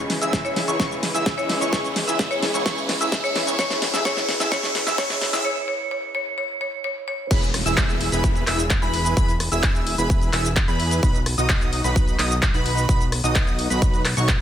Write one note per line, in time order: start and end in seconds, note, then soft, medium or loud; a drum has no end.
0.00 0.19 C#2 medium
0.00 0.53 C#3 medium
0.00 0.53 E3 medium
0.00 5.41 E3 medium
0.00 0.54 G#3 medium
0.00 3.55 G#3 medium
0.00 5.41 C#4 medium
0.00 0.54 E4 medium
0.00 riser medium
0.10 snare medium
0.10 open hi-hat loud
0.21 0.66 C#2 loud
0.21 0.65 E4 medium
0.21 0.65 G#4 medium
0.21 0.65 E5 medium
0.21 0.65 E6 medium
0.21 closed hi-hat soft
0.21 shaker medium
0.33 kick loud
0.33 snare medium
0.33 closed hi-hat soft
0.33 shaker medium
0.45 0.58 C#5 medium
0.45 closed hi-hat soft
0.45 shaker soft
0.55 0.77 C#3 medium
0.55 0.78 E3 medium
0.55 0.78 G#3 medium
0.55 0.78 E4 medium
0.55 snare medium
0.55 open hi-hat medium
0.68 0.77 C#2 loud
0.68 0.78 E4 medium
0.68 0.78 G#4 medium
0.68 0.78 C#5 medium
0.68 0.78 C#6 medium
0.68 closed hi-hat soft
0.68 shaker medium
0.78 1.12 C#2 loud
0.78 1.46 C#3 medium
0.78 1.46 E3 medium
0.78 1.47 G#3 medium
0.78 0.95 E4 medium
0.78 1.47 E4 medium
0.78 0.95 G#4 medium
0.78 0.95 C#5 loud
0.78 0.95 C#6 loud
0.78 kick loud
0.78 snare medium
0.78 closed hi-hat soft
0.78 shaker medium
0.91 closed hi-hat soft
0.91 shaker soft
1.03 snare medium
1.03 open hi-hat loud
1.15 1.59 C#2 medium
1.15 1.58 E4 medium
1.15 1.58 G#4 medium
1.15 1.58 E5 medium
1.15 1.58 E6 medium
1.15 closed hi-hat soft
1.15 shaker medium
1.26 kick loud
1.26 snare medium
1.26 closed hi-hat medium
1.26 shaker medium
1.38 1.51 C#5 medium
1.38 closed hi-hat soft
1.38 shaker soft
1.48 1.70 C#3 medium
1.48 1.71 E3 medium
1.48 1.71 G#3 medium
1.48 1.71 E4 medium
1.48 snare medium
1.48 open hi-hat medium
1.61 1.70 C#2 medium
1.61 1.71 E4 medium
1.61 1.71 G#4 medium
1.61 1.71 C#5 medium
1.61 1.71 C#6 medium
1.61 closed hi-hat medium
1.61 shaker medium
1.71 2.05 C#2 loud
1.71 2.39 C#3 medium
1.71 2.39 E3 medium
1.71 2.40 G#3 medium
1.71 1.88 E4 medium
1.71 2.40 E4 medium
1.71 1.88 G#4 medium
1.71 1.88 C#5 loud
1.71 1.88 C#6 loud
1.71 kick loud
1.71 snare medium
1.71 closed hi-hat soft
1.71 shaker medium
1.84 closed hi-hat soft
1.84 shaker soft
1.96 snare medium
1.96 open hi-hat loud
2.08 2.52 C#2 medium
2.08 2.51 E4 medium
2.08 2.51 G#4 medium
2.08 2.51 E5 medium
2.08 2.51 E6 medium
2.08 closed hi-hat medium
2.08 shaker medium
2.19 kick loud
2.19 snare medium
2.19 closed hi-hat medium
2.19 shaker medium
2.31 2.44 C#5 medium
2.31 closed hi-hat soft
2.31 shaker soft
2.41 2.63 C#3 medium
2.41 2.64 E3 medium
2.41 2.64 G#3 medium
2.41 2.64 E4 medium
2.41 snare medium
2.41 open hi-hat medium
2.54 2.63 C#2 loud
2.54 2.64 E4 medium
2.54 2.64 G#4 medium
2.54 2.64 C#5 medium
2.54 2.64 C#6 medium
2.54 closed hi-hat medium
2.54 shaker medium
2.64 2.98 C#2 loud
2.64 3.32 C#3 medium
2.64 3.32 E3 medium
2.64 3.33 G#3 medium
2.64 2.81 E4 medium
2.64 3.33 E4 medium
2.64 2.81 G#4 medium
2.64 2.81 C#5 loud
2.64 2.81 C#6 loud
2.64 kick loud
2.64 snare medium
2.64 closed hi-hat medium
2.64 shaker medium
2.77 closed hi-hat soft
2.77 shaker soft
2.89 snare medium
2.89 open hi-hat loud
3.01 3.45 C#2 loud
3.01 3.44 E4 medium
3.01 3.44 G#4 medium
3.01 3.44 E5 medium
3.01 3.44 E6 loud
3.01 closed hi-hat medium
3.01 shaker medium
3.12 kick loud
3.12 snare medium
3.12 closed hi-hat medium
3.12 shaker medium
3.24 3.37 C#5 medium
3.24 closed hi-hat soft
3.24 shaker soft
3.34 3.56 C#3 medium
3.34 3.57 E3 medium
3.34 3.57 G#3 medium
3.34 3.57 E4 medium
3.34 snare medium
3.34 open hi-hat medium
3.47 3.56 C#2 loud
3.47 3.57 E4 medium
3.47 3.57 G#4 medium
3.47 3.57 C#5 medium
3.47 3.57 C#6 medium
3.47 closed hi-hat medium
3.47 shaker medium
3.58 3.91 A1 loud
3.58 4.03 C#3 medium
3.58 4.03 E3 medium
3.58 4.04 G#3 medium
3.58 3.74 E4 medium
3.58 4.04 E4 medium
3.58 3.74 G#4 medium
3.58 3.74 C#5 loud
3.58 3.72 C#5 medium
3.58 3.74 C#6 loud
3.58 kick loud
3.58 snare medium
3.58 closed hi-hat medium
3.58 shaker medium
3.70 snare medium
3.70 closed hi-hat soft
3.70 shaker soft
3.82 snare medium
3.82 open hi-hat loud
3.94 4.03 A1 loud
3.94 4.03 E4 medium
3.94 4.03 G#4 medium
3.94 4.03 E5 medium
3.94 4.03 E6 medium
3.94 snare medium
3.94 closed hi-hat medium
3.94 shaker medium
4.04 4.38 A1 loud
4.04 4.49 C#3 medium
4.04 4.50 E3 medium
4.04 4.50 G#3 medium
4.04 4.21 E4 loud
4.04 4.21 G#4 medium
4.04 4.21 C#5 loud
4.04 4.18 C#5 medium
4.04 4.21 C#6 loud
4.04 kick loud
4.04 snare loud
4.04 closed hi-hat medium
4.04 shaker medium
4.17 snare medium
4.17 closed hi-hat soft
4.17 shaker soft
4.29 snare loud
4.29 open hi-hat medium
4.40 4.49 A1 loud
4.40 4.50 E4 medium
4.40 4.50 G#4 medium
4.40 4.50 E5 loud
4.40 4.50 E6 medium
4.40 snare medium
4.40 closed hi-hat medium
4.40 shaker medium
4.51 4.84 A1 loud
4.51 4.96 C#3 medium
4.51 4.96 E3 medium
4.51 4.97 G#3 medium
4.51 4.67 E4 loud
4.51 4.97 E4 medium
4.51 4.67 G#4 medium
4.51 4.65 C#5 medium
4.51 4.67 C#5 loud
4.51 4.67 C#6 loud
4.51 kick loud
4.51 snare loud
4.51 closed hi-hat medium
4.51 shaker medium
4.63 snare medium
4.63 closed hi-hat soft
4.63 shaker soft
4.75 snare loud
4.75 open hi-hat loud
4.87 4.96 A1 loud
4.87 4.96 E4 medium
4.87 4.96 G#4 medium
4.87 4.96 E5 medium
4.87 4.96 E6 medium
4.87 snare medium
4.87 closed hi-hat medium
4.87 shaker medium
4.97 5.31 A1 loud
4.97 5.42 C#3 medium
4.97 5.43 E3 medium
4.97 5.43 G#3 medium
4.97 5.14 E4 loud
4.97 5.44 E4 medium
4.97 5.14 G#4 medium
4.97 5.11 C#5 medium
4.97 5.14 C#5 loud
4.97 5.14 C#6 loud
4.97 kick loud
4.97 snare loud
4.97 closed hi-hat medium
4.97 shaker medium
5.10 snare medium
5.10 closed hi-hat soft
5.10 shaker soft
5.21 snare loud
5.21 open hi-hat medium
5.33 5.42 A1 loud
5.33 5.43 E4 medium
5.33 5.43 G#4 medium
5.33 5.43 E5 loud
5.33 5.43 E6 loud
5.33 snare medium
5.33 closed hi-hat medium
5.33 shaker medium
5.45 5.58 C#5 medium
5.68 5.81 C#5 medium
5.91 6.04 C#5 medium
6.15 6.28 C#5 loud
6.38 6.51 C#5 loud
6.61 6.74 C#5 loud
6.84 6.97 C#5 loud
7.08 7.21 C#5 loud
7.31 7.63 E1 loud
7.31 7.46 E4 loud
7.31 7.46 G#4 medium
7.31 7.46 B4 loud
7.31 7.46 B5 loud
7.31 kick loud
7.31 closed hi-hat medium
7.31 crash loud
7.31 downlifter medium
7.31 shaker medium
7.42 closed hi-hat soft
7.42 shaker soft
7.54 cross-stick medium
7.54 open hi-hat loud
7.66 8.10 E1 loud
7.66 8.09 E4 medium
7.66 8.09 G#4 medium
7.66 8.09 E5 loud
7.66 8.09 E6 medium
7.66 closed hi-hat medium
7.66 shaker medium
7.77 kick loud
7.77 clap loud
7.77 closed hi-hat medium
7.77 shaker medium
7.89 closed hi-hat soft
7.89 shaker soft
8.01 open hi-hat medium
8.12 8.45 E1 loud
8.12 8.44 E4 medium
8.12 8.44 G#4 medium
8.12 8.44 B4 medium
8.12 8.44 B5 medium
8.12 closed hi-hat medium
8.12 shaker medium
8.24 kick loud
8.24 closed hi-hat medium
8.24 shaker medium
8.35 closed hi-hat soft
8.35 shaker soft
8.47 8.80 E1 loud
8.47 8.63 E4 medium
8.47 8.63 G#4 medium
8.47 8.62 E5 medium
8.47 8.63 E6 medium
8.47 cross-stick medium
8.47 clap medium
8.47 open hi-hat loud
8.59 closed hi-hat medium
8.59 shaker medium
8.70 kick loud
8.70 clap loud
8.70 closed hi-hat medium
8.70 shaker medium
8.82 9.15 E1 medium
8.82 9.14 E4 medium
8.82 9.14 G#4 medium
8.82 9.14 B4 loud
8.82 9.14 B5 loud
8.82 closed hi-hat soft
8.82 shaker soft
8.94 open hi-hat medium
9.05 closed hi-hat medium
9.05 shaker medium
9.17 9.49 E1 loud
9.17 9.32 E4 medium
9.17 9.32 G#4 medium
9.17 9.32 B4 loud
9.17 9.32 B5 loud
9.17 kick loud
9.17 closed hi-hat medium
9.17 shaker medium
9.28 closed hi-hat soft
9.28 shaker soft
9.40 cross-stick medium
9.40 open hi-hat loud
9.52 9.96 E1 medium
9.52 9.95 E4 medium
9.52 9.95 G#4 medium
9.52 9.95 E5 medium
9.52 9.95 E6 loud
9.52 closed hi-hat medium
9.52 shaker medium
9.63 kick loud
9.63 clap loud
9.63 closed hi-hat medium
9.63 shaker medium
9.75 closed hi-hat soft
9.75 shaker soft
9.87 open hi-hat loud
9.98 10.31 E1 loud
9.98 10.30 E4 medium
9.98 10.30 G#4 medium
9.98 10.30 B4 medium
9.98 10.30 B5 medium
9.98 closed hi-hat medium
9.98 shaker medium
10.10 kick loud
10.10 closed hi-hat medium
10.10 shaker medium
10.22 closed hi-hat soft
10.22 shaker soft
10.33 10.66 E1 loud
10.33 10.49 E4 medium
10.33 10.49 G#4 medium
10.33 10.49 E5 medium
10.33 10.49 E6 medium
10.33 cross-stick medium
10.33 clap medium
10.33 open hi-hat loud
10.45 closed hi-hat medium
10.45 shaker medium
10.56 kick loud
10.56 clap loud
10.56 closed hi-hat medium
10.56 shaker medium
10.68 11.01 E2 loud
10.68 11.00 E4 medium
10.68 11.00 G#4 medium
10.68 11.00 B4 loud
10.68 11.00 B5 loud
10.68 closed hi-hat soft
10.68 shaker soft
10.80 open hi-hat medium
10.91 closed hi-hat medium
10.91 shaker medium
11.03 11.35 B1 loud
11.03 11.18 D#4 medium
11.03 11.18 F#4 medium
11.03 11.18 B4 loud
11.03 11.18 B5 loud
11.03 kick loud
11.03 closed hi-hat soft
11.03 shaker medium
11.15 closed hi-hat soft
11.15 shaker soft
11.26 cross-stick medium
11.26 open hi-hat loud
11.38 11.82 B1 loud
11.38 11.82 D#4 medium
11.38 11.82 F#4 medium
11.38 11.82 D#5 loud
11.38 11.82 D#6 loud
11.38 closed hi-hat medium
11.38 shaker medium
11.49 kick loud
11.49 clap loud
11.49 closed hi-hat medium
11.49 shaker medium
11.61 closed hi-hat soft
11.61 shaker soft
11.73 open hi-hat loud
11.84 12.17 B1 loud
11.84 12.16 D#4 medium
11.84 12.16 F#4 medium
11.84 12.16 B4 medium
11.84 12.16 B5 medium
11.84 closed hi-hat medium
11.84 shaker medium
11.96 kick loud
11.96 closed hi-hat medium
11.96 shaker medium
12.08 closed hi-hat soft
12.08 shaker soft
12.19 12.52 B1 loud
12.19 12.35 D#4 medium
12.19 12.35 F#4 medium
12.19 12.35 D#5 medium
12.19 12.35 D#6 medium
12.19 cross-stick medium
12.19 clap medium
12.19 open hi-hat loud
12.31 closed hi-hat soft
12.31 shaker medium
12.42 kick loud
12.42 clap loud
12.42 closed hi-hat medium
12.42 shaker medium
12.54 12.87 B1 loud
12.54 12.86 D#4 loud
12.54 12.86 F#4 medium
12.54 12.86 B4 loud
12.54 12.86 B5 loud
12.54 closed hi-hat soft
12.54 shaker soft
12.66 open hi-hat loud
12.77 closed hi-hat medium
12.77 shaker medium
12.89 13.21 B1 loud
12.89 13.04 D#4 loud
12.89 13.04 F#4 medium
12.89 13.04 B4 loud
12.89 13.04 B5 loud
12.89 kick loud
12.89 closed hi-hat soft
12.89 shaker medium
13.01 closed hi-hat soft
13.01 shaker soft
13.12 cross-stick medium
13.12 open hi-hat loud
13.24 13.68 B1 loud
13.24 13.68 D#4 medium
13.24 13.68 F#4 medium
13.24 13.68 D#5 loud
13.24 13.68 D#6 medium
13.24 shaker medium
13.35 kick loud
13.35 clap loud
13.35 closed hi-hat medium
13.35 shaker medium
13.47 closed hi-hat soft
13.47 shaker soft
13.59 open hi-hat loud
13.70 14.15 B1 loud
13.70 14.02 D#4 medium
13.70 14.02 F#4 medium
13.70 14.02 B4 medium
13.70 14.02 B5 medium
13.70 closed hi-hat medium
13.70 shaker medium
13.82 kick loud
13.82 closed hi-hat medium
13.82 shaker medium
13.94 closed hi-hat soft
13.94 shaker soft
14.05 cross-stick medium
14.05 clap medium
14.05 open hi-hat loud
14.17 14.38 B1 loud
14.17 14.32 D#4 medium
14.17 14.32 F#4 medium
14.17 14.32 C#5 medium
14.17 14.32 C#6 loud
14.17 closed hi-hat medium
14.17 shaker medium
14.28 kick loud
14.28 clap loud
14.28 closed hi-hat medium
14.28 shaker medium